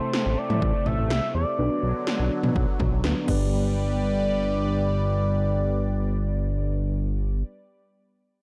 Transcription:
Already playing: analog synth pad C3 A3, synth keys C4 E4 A4 C5, analog synth lead C5
0.13 snare
0.26 analog synth bass A1
0.38 analog synth lead D5
0.50 analog synth bass A2, mid tom
0.62 analog synth bass A1, kick
0.86 analog synth bass A1, analog synth lead E5, mid tom
0.98 analog synth bass A1
1.10 analog synth bass C2, analog synth lead E5, snare
1.35 analog synth bass E2, analog synth lead D5
1.59 analog synth bass B1, analog synth pad D3 F#3, synth keys B3 D4 F#4 B4
1.83 analog synth bass B1
2.07 snare
2.19 analog synth bass B1
2.44 analog synth bass B2, mid tom
2.56 analog synth bass B1, kick
2.80 analog synth bass B1, kick, mid tom
2.92 analog synth bass B1
3.04 analog synth bass D2, synth keys B3 D4 F#4 B4, snare
3.26 analog synth bass G1, analog synth pad G3 G4 B4 D5, synth keys B3 D4 G4 B4, analog synth lead D5, kick, crash

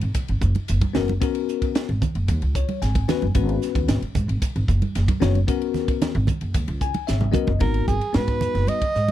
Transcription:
0.01 upright bass G#1, ride
0.14 muted upright bass stroke, kick, hi-hat pedal, ride
0.28 upright bass G#1, ride
0.41 upright bass F#1, kick, hi-hat pedal
0.55 ride, high conga
0.68 upright bass F#1, hi-hat pedal, ride
0.81 kick, ride, high conga
0.93 upright bass F#1, tine electric piano B3 C#4 F#4 A#4, snare, hi-hat pedal, low conga
1.08 ride, high conga
1.21 tine electric piano B3 C#4 F#4 A#4, kick, hi-hat pedal, ride
1.35 ride
1.49 hi-hat pedal
1.62 kick, ride
1.75 snare, hi-hat pedal, ride
1.89 upright bass G#1, ride
2.02 kick, hi-hat pedal, low conga
2.15 upright bass F#1, ride
2.28 upright bass D#2, kick, hi-hat pedal, ride
2.42 upright bass C#2, ride
2.55 tine electric piano C#5, kick, hi-hat pedal
2.69 ride, high conga
2.82 upright bass G#1, tine electric piano G#5, snare, hi-hat pedal, ride
2.95 kick, ride, high conga
3.08 tine electric piano B3 C#4 F#4 B4, snare, hi-hat pedal, low conga
3.22 upright bass F#1, ride, high conga
3.34 upright bass G#1, tine electric piano B3 C#4 F#4 B4, kick, hi-hat pedal, ride
3.49 ride
3.62 snare, hi-hat pedal
3.75 upright bass D#2, kick, ride
3.88 upright bass G#1, snare, hi-hat pedal, ride
4.02 muted upright bass stroke, ride
4.15 upright bass G#2, kick, hi-hat pedal, low conga
4.28 upright bass G#1, ride
4.42 muted upright bass stroke, kick, hi-hat pedal, ride
4.56 upright bass G#1, ride
4.68 upright bass F#1, kick, hi-hat pedal
4.82 ride, high conga
4.95 upright bass F#1, snare, hi-hat pedal, ride
5.08 kick, ride, high conga
5.20 upright bass F#1, tine electric piano B3 C#4 F#4 C#5, snare, hi-hat pedal, low conga
5.35 ride, high conga
5.47 tine electric piano B3 C#4 F#4 A#4, kick, hi-hat pedal, ride
5.62 ride
5.74 snare, hi-hat pedal, low conga
5.88 kick, ride
6.02 snare, hi-hat pedal, ride, low conga
6.15 upright bass G#1, ride
6.27 kick, hi-hat pedal, low conga
6.41 upright bass F#1, ride
6.54 upright bass D#2, kick, hi-hat pedal, ride
6.68 upright bass C#2, ride
6.81 tine electric piano G#5, kick, hi-hat pedal
6.94 ride, high conga
7.07 upright bass G#1, tine electric piano E5, snare, hi-hat pedal
7.21 mid tom, high conga
7.32 tine electric piano B3 C#4 F#4 A#4 D#5, kick, hi-hat pedal, high conga, low conga
7.47 upright bass F#1, kick, high conga
7.59 upright bass G#1, tine electric piano B3 D#4 F#4 A#4, soprano saxophone A#4, kick, ride
7.74 ride
7.88 upright bass G#1, soprano saxophone G#4, kick, hi-hat pedal, high conga
8.01 ride
8.13 upright bass G#2, tine electric piano B3 D#4 F#4 B4, soprano saxophone B4, snare, ride
8.27 kick, ride
8.41 hi-hat pedal, low conga
8.54 upright bass F#1, snare, ride
8.67 soprano saxophone D#5, ride, high conga
8.82 muted upright bass stroke, kick, ride
8.95 upright bass G#2, snare, hi-hat pedal
9.08 ride, high conga

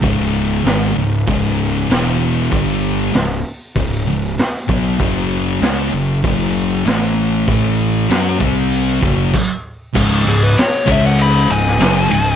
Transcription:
0.02 picked electric bass C#1, distorted electric guitar C#2 G#2 C#3, kick, open hi-hat
0.64 picked electric bass G#1, distorted electric guitar G#2 D#3 G#3, snare, open hi-hat
0.96 picked electric bass C#1, distorted electric guitar C#2 G#2
1.27 picked electric bass C#1, distorted electric guitar C#2 G#2 C#3, kick, open hi-hat
1.89 picked electric bass E1, distorted electric guitar E2 B2 E3, snare, open hi-hat
2.51 picked electric bass G1, distorted electric guitar G2 D3 G3, kick, open hi-hat
3.13 picked electric bass C#1, distorted electric guitar C#2 G#2, snare, open hi-hat
3.76 picked electric bass C#1, distorted electric guitar C#2 G#2, kick, open hi-hat
4.06 picked electric bass C#1, distorted electric guitar C#2 G#2
4.38 snare, open hi-hat
4.67 picked electric bass B1, distorted electric guitar B2 F#3 B3, kick
4.99 picked electric bass F#1, distorted electric guitar F#2 C#3 F#3, kick, open hi-hat
5.61 picked electric bass C#2, distorted electric guitar C#3 G#3 C#4, snare, open hi-hat
5.92 picked electric bass F#1, distorted electric guitar F#2 C#3
6.24 picked electric bass F#1, distorted electric guitar F#2 C#3 F#3, kick, open hi-hat
6.84 picked electric bass A1, distorted electric guitar A2 E3 A3, snare, open hi-hat
7.47 picked electric bass A1, distorted electric guitar A2 E3 A3, kick, open hi-hat
8.08 picked electric bass F#2, distorted electric guitar F#3 C#4 F#4, snare, open hi-hat
8.39 picked electric bass C2, distorted electric guitar C3 G3 C4, kick
8.72 open hi-hat
9.01 picked electric bass F#1, distorted electric guitar F#2 C#3 F#3, kick
9.34 kick, crash
9.95 picked electric bass C#1, distorted electric guitar C#2 G#2 C#3, kick, crash
10.24 picked electric bass C#1, distorted electric guitar C#2 G#2, ride
10.29 lead electric guitar G#4
10.43 lead electric guitar B4
10.57 lead electric guitar C#5, snare, ride
10.86 picked electric bass C#2, distorted electric guitar C#3 G#3 C#4, kick, ride
10.92 lead electric guitar E5
11.06 lead electric guitar F#5
11.18 lead electric guitar B5, ride
11.48 picked electric bass C#1, distorted electric guitar C#2 G#2, ride
11.52 lead electric guitar G#5
11.67 snare
11.79 picked electric bass F#1, distorted electric guitar F#2 C#3 F#3, snare, ride
12.10 picked electric bass C#1, distorted electric guitar C#2 G#2, ride

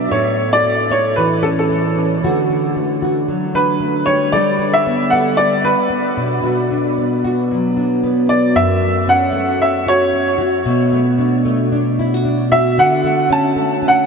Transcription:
Already playing: nylon-string guitar B2 F#3 B3 D4 F#4
0.11 nylon-string guitar A2 A4, upright piano C#5
0.53 upright piano D5
0.63 nylon-string guitar A3
0.90 nylon-string guitar A4, upright piano C#5
1.16 nylon-string guitar E3, upright piano B4
1.43 nylon-string guitar C#4, upright piano A4
1.59 upright piano A4
1.70 nylon-string guitar A3
1.95 nylon-string guitar C#4
2.23 nylon-string guitar D3 F#4
2.50 nylon-string guitar D4
2.76 nylon-string guitar A3
3.02 nylon-string guitar F#4
3.28 nylon-string guitar F#3
3.54 nylon-string guitar D4, upright piano B4
3.80 nylon-string guitar A3
4.06 nylon-string guitar G3, upright piano C#5
4.32 nylon-string guitar G3 A4, upright piano D5
4.59 nylon-string guitar D4
4.73 upright piano E5
4.86 nylon-string guitar B3
5.10 nylon-string guitar A4, upright piano F#5
5.37 nylon-string guitar B3, upright piano D5
5.64 nylon-string guitar D4, upright piano B4
5.90 nylon-string guitar B3
6.17 nylon-string guitar B2
6.43 nylon-string guitar B2 F#4
6.71 nylon-string guitar D4
6.98 nylon-string guitar B3
7.24 nylon-string guitar F#4
7.51 nylon-string guitar F#3
7.77 nylon-string guitar D4
8.03 nylon-string guitar B3
8.29 nylon-string guitar D4, upright piano D5
8.55 nylon-string guitar F#2, upright piano E5
8.82 nylon-string guitar A3
9.07 nylon-string guitar C#4, upright piano F#5
9.33 nylon-string guitar A3
9.60 nylon-string guitar C#4, upright piano E5
9.86 nylon-string guitar F#4, upright piano C#5
10.14 nylon-string guitar C#4
10.38 nylon-string guitar F#4
10.65 nylon-string guitar B2
10.92 nylon-string guitar A3
11.18 nylon-string guitar D4
11.45 nylon-string guitar A3
11.72 nylon-string guitar D4
11.99 nylon-string guitar E4
12.14 nylon-string guitar F#4
12.25 nylon-string guitar D4
12.52 nylon-string guitar F#4, upright piano E5
12.77 nylon-string guitar D3, upright piano F#5
13.04 nylon-string guitar A3
13.30 nylon-string guitar C#4, upright piano A5
13.56 nylon-string guitar A3
13.82 nylon-string guitar C#4
13.88 upright piano F#5

